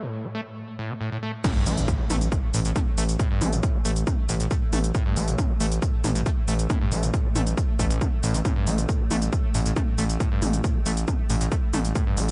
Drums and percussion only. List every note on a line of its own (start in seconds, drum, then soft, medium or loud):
1.44 kick loud
1.44 closed hi-hat medium
1.44 mid tom medium
1.44 crash loud
1.44 shaker soft
1.66 open hi-hat loud
1.66 shaker medium
1.78 closed hi-hat medium
1.78 shaker soft
1.88 kick loud
1.88 closed hi-hat medium
1.88 shaker soft
2.10 open hi-hat loud
2.10 mid tom loud
2.10 shaker medium
2.21 closed hi-hat medium
2.21 shaker soft
2.32 kick loud
2.32 closed hi-hat medium
2.32 shaker soft
2.54 open hi-hat loud
2.54 shaker medium
2.65 closed hi-hat medium
2.65 shaker soft
2.76 kick loud
2.76 closed hi-hat medium
2.76 mid tom loud
2.76 shaker soft
2.98 open hi-hat loud
2.98 shaker medium
3.09 closed hi-hat medium
3.09 shaker soft
3.19 kick loud
3.19 closed hi-hat medium
3.19 shaker soft
3.41 open hi-hat loud
3.41 mid tom medium
3.41 shaker medium
3.53 closed hi-hat medium
3.53 shaker soft
3.63 kick loud
3.63 closed hi-hat medium
3.63 shaker soft
3.85 open hi-hat loud
3.85 shaker medium
3.96 closed hi-hat medium
3.96 shaker soft
4.07 kick loud
4.07 closed hi-hat medium
4.07 mid tom medium
4.07 shaker soft
4.29 open hi-hat loud
4.29 shaker medium
4.40 closed hi-hat medium
4.40 shaker soft
4.51 kick loud
4.51 closed hi-hat medium
4.51 shaker soft
4.73 open hi-hat loud
4.73 mid tom medium
4.73 shaker medium
4.84 closed hi-hat medium
4.84 shaker soft
4.95 kick loud
4.95 closed hi-hat medium
4.95 shaker soft
5.17 open hi-hat loud
5.17 shaker medium
5.28 closed hi-hat medium
5.28 shaker soft
5.38 kick loud
5.38 closed hi-hat medium
5.38 mid tom medium
5.38 shaker soft
5.60 open hi-hat loud
5.60 shaker medium
5.72 closed hi-hat medium
5.72 shaker soft
5.82 kick loud
5.82 closed hi-hat medium
5.82 shaker soft
6.04 open hi-hat loud
6.04 mid tom medium
6.04 shaker medium
6.15 closed hi-hat medium
6.15 shaker soft
6.26 kick loud
6.26 closed hi-hat medium
6.26 shaker soft
6.48 open hi-hat loud
6.48 shaker medium
6.59 closed hi-hat medium
6.59 shaker soft
6.70 kick loud
6.70 closed hi-hat medium
6.70 mid tom medium
6.70 shaker soft
6.92 open hi-hat loud
6.92 shaker medium
7.03 closed hi-hat medium
7.03 shaker soft
7.14 kick loud
7.14 closed hi-hat medium
7.14 shaker soft
7.36 open hi-hat loud
7.36 mid tom medium
7.36 shaker medium
7.47 closed hi-hat medium
7.47 shaker soft
7.57 kick loud
7.57 closed hi-hat medium
7.57 shaker soft
7.79 kick medium
7.79 open hi-hat loud
7.79 shaker medium
7.91 closed hi-hat medium
7.91 shaker soft
8.01 kick loud
8.01 closed hi-hat medium
8.01 mid tom medium
8.01 shaker soft
8.23 open hi-hat loud
8.23 shaker medium
8.34 closed hi-hat medium
8.34 shaker soft
8.45 kick loud
8.45 closed hi-hat medium
8.45 mid tom loud
8.45 shaker soft
8.67 open hi-hat loud
8.67 shaker medium
8.78 closed hi-hat medium
8.78 shaker soft
8.89 kick loud
8.89 closed hi-hat medium
8.89 shaker soft
9.11 open hi-hat loud
9.11 mid tom medium
9.11 shaker medium
9.22 closed hi-hat medium
9.22 shaker soft
9.33 kick loud
9.33 closed hi-hat medium
9.33 shaker soft
9.55 open hi-hat loud
9.55 shaker medium
9.66 closed hi-hat medium
9.66 shaker soft
9.76 kick loud
9.76 closed hi-hat medium
9.76 mid tom loud
9.76 shaker soft
9.98 open hi-hat loud
9.98 shaker medium
10.10 closed hi-hat medium
10.10 shaker soft
10.20 kick loud
10.20 closed hi-hat medium
10.20 shaker soft
10.42 open hi-hat loud
10.42 mid tom loud
10.42 shaker medium
10.53 closed hi-hat medium
10.53 shaker soft
10.64 kick loud
10.64 closed hi-hat medium
10.64 shaker soft
10.86 open hi-hat loud
10.86 shaker medium
10.97 closed hi-hat medium
10.97 shaker soft
11.08 kick loud
11.08 closed hi-hat medium
11.08 mid tom medium
11.08 shaker soft
11.30 open hi-hat loud
11.30 shaker medium
11.41 closed hi-hat medium
11.41 shaker soft
11.52 kick loud
11.52 closed hi-hat medium
11.52 shaker soft
11.73 open hi-hat loud
11.73 mid tom loud
11.73 shaker medium
11.85 closed hi-hat medium
11.85 shaker soft
11.95 kick loud
11.95 closed hi-hat medium
11.95 shaker soft
12.17 open hi-hat loud
12.17 shaker medium